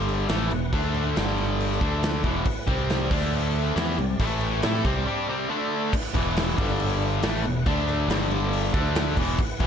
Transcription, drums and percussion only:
0.09 crash
0.29 snare, crash
0.51 crash
0.73 kick, crash
0.94 crash
1.16 snare, crash
1.28 snare
1.38 crash
1.60 crash
1.81 kick, crash
2.03 snare, crash
2.24 kick, crash
2.45 kick, crash
2.68 kick, crash
2.90 snare, crash
3.11 kick, crash
3.33 crash
3.56 crash
3.77 snare, crash
3.98 crash
4.20 kick, crash
4.41 crash
4.62 snare, crash
4.75 snare
4.85 kick, crash
5.93 kick, crash
6.15 kick, crash
6.37 snare, crash
6.48 snare
6.58 kick, crash
6.80 crash
7.02 crash
7.23 snare, crash
7.45 crash
7.66 kick, crash
7.88 crash
8.10 snare, crash
8.22 snare
8.31 crash
8.53 crash
8.74 kick, crash
8.95 snare, crash
9.17 kick, crash
9.39 kick, crash
9.60 kick, crash

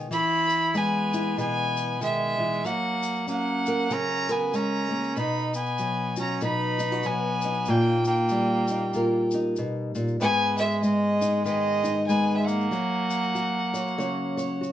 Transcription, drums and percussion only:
0.12 shaker
0.49 shaker
0.62 shaker
0.75 shaker
1.13 shaker
1.39 shaker
1.77 shaker
2.02 shaker
2.54 shaker
2.66 shaker
3.03 shaker
3.15 shaker
3.28 shaker
3.66 shaker
3.79 shaker
3.90 shaker
4.28 shaker
4.54 shaker
5.04 shaker
5.16 shaker
5.54 shaker
5.66 shaker
5.78 shaker
6.16 shaker
6.41 shaker
6.79 shaker
7.03 shaker
7.42 shaker
7.54 shaker
7.66 shaker
8.05 shaker
8.17 shaker
8.29 shaker
8.68 shaker
8.94 shaker
9.31 shaker
9.56 shaker
9.95 shaker
10.08 shaker
10.21 shaker
10.58 shaker
10.71 shaker
10.83 shaker
11.22 shaker
11.46 shaker
11.85 shaker
12.09 shaker
12.48 shaker
12.61 shaker
12.72 shaker
13.10 shaker
13.23 shaker
13.35 shaker
13.74 shaker
13.88 shaker
14.00 shaker
14.38 shaker
14.63 shaker

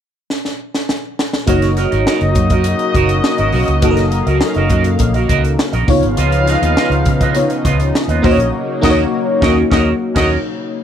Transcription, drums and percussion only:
0.30 snare
0.45 snare
0.74 snare
0.89 snare
1.19 snare
1.33 snare
1.47 kick, closed hi-hat
1.62 snare, closed hi-hat
1.77 snare, closed hi-hat
1.92 closed hi-hat
2.07 snare
2.21 closed hi-hat
2.35 kick, closed hi-hat
2.50 kick, closed hi-hat
2.64 closed hi-hat
2.79 closed hi-hat
2.95 kick, closed hi-hat
3.09 closed hi-hat
3.24 snare
3.38 closed hi-hat
3.52 open hi-hat
3.68 closed hi-hat
3.82 kick, closed hi-hat
3.97 snare, closed hi-hat
4.12 closed hi-hat
4.27 closed hi-hat
4.41 snare
4.54 closed hi-hat
4.69 kick, closed hi-hat
4.84 closed hi-hat
4.99 kick, closed hi-hat
5.14 closed hi-hat
5.29 kick, closed hi-hat
5.45 closed hi-hat
5.59 snare
5.73 closed hi-hat
5.88 kick, open hi-hat
6.03 closed hi-hat
6.17 closed hi-hat
6.32 closed hi-hat
6.47 snare, closed hi-hat
6.63 closed hi-hat
6.77 snare
6.92 closed hi-hat
7.06 kick, closed hi-hat
7.21 kick, closed hi-hat
7.35 closed hi-hat
7.50 closed hi-hat
7.65 kick, closed hi-hat
7.80 closed hi-hat
7.95 snare
8.09 closed hi-hat
8.24 kick, open hi-hat
8.40 closed hi-hat
8.83 kick, snare, crash
9.42 kick, snare
9.72 kick, snare
10.16 kick, snare, crash

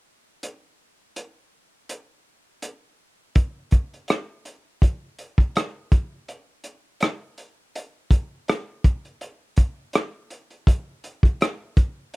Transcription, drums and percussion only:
0.43 closed hi-hat
1.16 closed hi-hat
1.89 closed hi-hat
2.62 closed hi-hat
3.35 kick, closed hi-hat
3.71 kick, closed hi-hat
3.94 closed hi-hat
4.08 cross-stick, closed hi-hat
4.45 closed hi-hat
4.82 kick, closed hi-hat
5.19 closed hi-hat
5.38 kick, closed hi-hat
5.56 cross-stick, closed hi-hat
5.92 kick, closed hi-hat
6.28 closed hi-hat
6.64 closed hi-hat
7.00 cross-stick, closed hi-hat
7.38 closed hi-hat
7.75 closed hi-hat
8.11 kick, closed hi-hat
8.48 cross-stick, closed hi-hat
8.84 kick, closed hi-hat
9.05 closed hi-hat
9.21 closed hi-hat
9.56 kick, closed hi-hat
9.93 cross-stick, closed hi-hat
10.30 closed hi-hat
10.51 closed hi-hat
10.67 kick, closed hi-hat
11.04 closed hi-hat
11.23 kick, closed hi-hat
11.41 cross-stick, closed hi-hat
11.77 kick, closed hi-hat

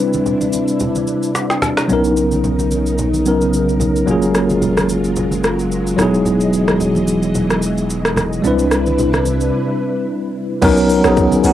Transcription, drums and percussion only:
0.13 high conga, shaker
0.26 low conga, shaker
0.41 high conga, shaker
0.53 high conga, shaker
0.68 shaker
0.80 low conga, shaker
0.95 high conga, shaker
1.07 shaker
1.23 shaker
1.35 snare, shaker
1.50 snare, shaker
1.62 snare, high conga, low conga, shaker
1.77 snare, shaker
1.89 low conga, shaker
2.04 shaker
2.17 shaker
2.31 high conga, shaker
2.44 low conga, shaker
2.59 high conga, shaker
2.71 high conga, shaker
2.86 shaker
2.98 low conga, shaker
3.13 high conga, shaker
3.26 shaker
3.41 shaker
3.53 shaker
3.69 shaker
3.80 high conga, low conga, shaker
3.96 shaker
4.07 low conga, shaker
4.22 shaker
4.35 cross-stick, shaker
4.50 high conga, shaker
4.62 low conga, shaker
4.77 cross-stick, high conga, shaker
4.89 high conga, shaker
5.04 shaker
5.16 low conga, shaker
5.31 high conga, shaker
5.44 cross-stick, shaker
5.59 shaker
5.71 shaker
5.87 shaker
5.98 cross-stick, high conga, low conga, shaker
6.14 shaker
6.25 low conga, shaker
6.41 shaker
6.53 shaker
6.68 cross-stick, high conga, shaker
6.80 low conga, shaker
6.95 high conga, shaker
7.08 high conga, shaker
7.23 shaker
7.35 low conga, shaker
7.50 cross-stick, high conga, shaker
7.62 shaker
7.78 shaker
7.90 shaker
8.05 cross-stick, shaker
8.16 cross-stick, high conga, low conga, shaker
8.33 shaker
8.44 low conga, shaker
8.59 shaker
8.71 cross-stick, shaker
8.86 high conga, shaker
8.98 low conga, shaker
9.13 cross-stick, high conga, shaker
9.26 high conga, shaker
9.41 shaker
10.62 kick, crash, low conga, shaker
10.77 shaker
10.89 open hi-hat, shaker
11.04 cross-stick, high conga, shaker
11.17 kick, shaker
11.31 high conga, shaker
11.44 open hi-hat, shaker

